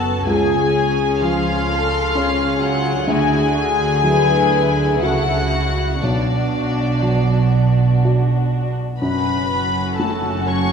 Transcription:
0.00 0.23 F#1 soft
0.00 0.23 F#2 soft
0.00 0.30 A3 soft
0.00 0.26 B3 soft
0.00 0.23 C#4 soft
0.00 0.26 F#4 soft
0.00 0.27 A4 medium
0.00 0.23 C#5 soft
0.00 0.27 A5 medium
0.26 3.04 C#2 soft
0.26 3.04 C#2 medium
0.26 3.04 C#3 soft
0.26 2.14 C#4 soft
0.26 1.21 G#4 soft
0.26 1.21 G#4 medium
0.26 1.20 G#5 medium
1.21 2.71 F3 soft
1.21 2.61 F4 medium
1.21 1.68 G#4 medium
1.21 2.61 F5 medium
1.68 2.14 A4 medium
2.15 2.60 C#4 medium
2.15 3.04 C#4 soft
2.15 3.08 G#4 soft
2.15 3.05 C#5 soft
2.61 3.08 F#3 medium
2.61 3.09 F4 medium
2.61 3.08 F#5 medium
3.07 4.97 D2 soft
3.07 4.97 D2 medium
3.07 4.98 D3 medium
3.07 3.56 E4 soft
3.07 3.54 F#4 soft
3.07 5.02 G#4 medium
3.07 5.01 G#5 medium
3.55 4.03 F#4 soft
4.03 5.61 F#3 soft
4.03 5.97 E4 medium
4.03 5.01 B4 soft
5.01 6.01 C#2 soft
5.01 6.01 C#3 soft
5.01 5.98 F#4 soft
5.01 6.02 F#4 medium
5.01 5.52 A4 medium
5.01 5.98 E5 soft
5.01 6.00 F#5 medium
5.51 6.01 F#4 medium
6.01 8.80 B1 soft
6.01 8.97 B1 soft
6.01 8.80 B2 soft
6.01 8.76 D4 soft
6.01 8.02 D4 soft
6.01 8.77 F#4 soft
6.01 8.02 D5 medium
7.02 8.62 F#3 soft
8.04 8.98 F#4 soft
8.04 8.98 D5 soft
8.99 10.72 F#1 medium
8.99 10.72 F#2 soft
8.99 10.72 C#4 soft
8.99 10.72 F#4 soft
8.99 9.94 B4 medium
8.99 9.94 B5 medium
9.98 10.72 A3 soft
9.98 10.46 A4 soft
9.98 10.47 A5 medium
10.47 10.72 C#5 medium
10.47 10.72 C#6 medium

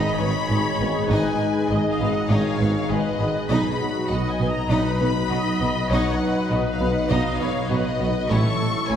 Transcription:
0.00 3.45 G#3 medium
0.00 0.18 D#4 medium
0.00 3.45 D#4 medium
0.00 3.46 D#4 medium
0.00 3.45 G#4 medium
0.00 0.18 D#5 medium
0.00 0.19 D#5 medium
0.00 3.45 D#5 medium
0.00 1.10 B5 medium
0.00 impact medium
0.19 0.28 G#1 soft
0.19 0.32 G#1 soft
0.19 0.28 G#2 soft
0.19 0.29 B3 soft
0.19 0.29 B4 soft
0.19 1.09 C#5 medium
0.49 0.57 G#1 soft
0.49 0.62 G#1 soft
0.49 0.58 G#2 soft
0.49 0.59 G#3 medium
0.49 0.58 G#4 medium
0.79 0.87 G#1 soft
0.79 0.92 G#1 soft
0.79 0.88 G#2 soft
0.79 0.89 B3 soft
0.79 0.89 B4 soft
1.09 1.17 G#1 medium
1.09 1.22 G#1 medium
1.09 1.18 G#2 medium
1.09 1.38 D#4 medium
1.09 1.38 B4 medium
1.09 1.38 D#5 medium
1.09 1.68 G#5 medium
1.39 1.69 B4 medium
1.69 1.77 G#1 soft
1.69 1.82 G#1 soft
1.69 1.78 G#2 soft
1.69 1.79 G#3 soft
1.69 1.79 G#4 soft
1.69 2.29 D#5 medium
1.69 1.90 D#5 medium
1.91 2.10 F5 medium
1.99 2.07 G#1 soft
1.99 2.12 G#1 soft
1.99 2.08 G#2 soft
1.99 2.09 B3 soft
1.99 2.09 B4 soft
2.11 2.30 F#5 medium
2.29 2.38 G#1 medium
2.29 2.42 G#1 medium
2.29 2.38 G#2 medium
2.29 2.58 D#4 medium
2.29 2.88 C#5 medium
2.29 2.58 D#5 medium
2.29 2.89 F5 medium
2.60 2.68 G#1 soft
2.60 2.72 G#1 soft
2.60 2.68 G#2 soft
2.60 2.68 B3 soft
2.60 2.68 B4 soft
2.90 2.98 G#1 soft
2.90 3.02 G#1 soft
2.90 2.98 G#2 soft
2.90 2.98 G#3 medium
2.90 2.98 G#4 medium
2.90 3.19 B4 medium
2.90 3.49 D#5 medium
3.19 3.27 G#1 soft
3.19 3.32 G#1 soft
3.19 3.28 G#2 soft
3.19 3.27 B3 soft
3.19 3.27 B4 medium
3.19 3.50 B4 medium
3.49 3.58 B1 medium
3.49 3.62 B1 medium
3.49 3.58 B2 medium
3.49 8.11 F#3 medium
3.49 8.30 F#3 medium
3.49 8.11 D#4 medium
3.49 8.26 D#4 medium
3.49 3.78 D#4 medium
3.49 3.80 G#4 medium
3.49 8.29 B4 medium
3.49 8.25 D#5 medium
3.49 3.78 D#5 medium
3.49 4.08 B5 medium
3.81 4.10 F#4 medium
4.09 4.22 B1 soft
4.09 4.18 B1 medium
4.09 4.18 B2 soft
4.09 4.19 B3 soft
4.09 4.19 F#4 soft
4.09 4.70 D#5 medium
4.09 4.29 F#5 medium
4.31 4.50 G#5 medium
4.39 4.47 B1 soft
4.39 4.52 B1 soft
4.39 4.48 B2 soft
4.39 4.48 B3 soft
4.39 4.48 B4 soft
4.50 4.70 A#5 medium
4.70 4.78 B1 medium
4.70 4.82 B1 medium
4.70 4.78 B2 medium
4.70 4.98 D#4 medium
4.70 5.29 B4 medium
4.70 4.98 D#5 medium
4.70 5.90 B5 medium
4.99 5.07 B1 soft
4.99 5.12 B1 soft
4.99 5.09 B2 soft
4.99 5.08 B3 medium
4.99 5.08 B4 soft
5.29 5.37 B1 soft
5.29 5.42 B1 soft
5.29 5.38 B2 soft
5.29 5.39 B3 medium
5.29 5.38 F#4 medium
5.29 5.90 D#5 medium
5.59 5.67 B1 soft
5.59 5.72 B1 medium
5.59 5.69 B2 soft
5.59 5.68 B3 soft
5.59 5.69 B4 soft
5.90 5.98 B1 medium
5.90 6.02 B1 medium
5.90 5.98 B2 medium
5.90 6.19 D#4 medium
5.90 6.20 C#5 medium
5.90 6.19 D#5 medium
5.90 6.49 F#5 medium
6.21 7.08 B4 medium
6.50 6.58 B1 medium
6.50 6.62 B1 soft
6.50 6.58 B2 soft
6.50 6.59 B3 soft
6.50 6.58 F#4 soft
6.50 6.70 D#5 medium
6.71 6.90 F5 medium
6.80 6.88 B1 soft
6.80 6.92 B1 soft
6.80 6.88 B2 medium
6.80 6.89 B3 soft
6.80 6.89 B4 soft
6.91 7.10 F#5 medium
7.09 7.17 B1 medium
7.09 7.22 B1 medium
7.09 7.18 B2 medium
7.09 7.38 D#4 medium
7.09 7.38 D#5 medium
7.09 7.40 D#5 medium
7.09 7.70 F5 medium
7.40 7.48 B1 soft
7.40 7.53 B1 medium
7.40 7.48 B2 medium
7.40 7.48 B3 medium
7.40 7.48 B4 medium
7.40 7.71 C#5 medium
7.69 7.78 B1 medium
7.69 7.82 B1 medium
7.69 7.78 B2 soft
7.69 7.77 B3 medium
7.69 7.77 F#4 medium
7.69 8.00 B4 medium
7.69 8.29 D#5 medium
8.00 8.08 B1 soft
8.00 8.13 B1 medium
8.00 8.08 B2 medium
8.00 8.08 B3 medium
8.00 8.08 B4 medium
8.00 8.30 B4 medium
8.28 8.38 A1 medium
8.28 8.42 A1 medium
8.28 8.38 A2 medium
8.28 8.96 E3 medium
8.28 8.96 A3 medium
8.28 8.96 E4 medium
8.28 8.57 E4 medium
8.28 8.96 E4 medium
8.28 8.96 A4 medium
8.28 8.90 A4 medium
8.28 8.96 C#5 medium
8.28 8.57 C#5 medium
8.28 8.90 C#6 medium
8.89 8.96 A1 medium
8.89 8.96 A2 medium
8.89 8.96 A3 soft
8.89 8.96 E4 soft
8.89 8.96 C#5 medium
8.89 8.96 G#5 medium

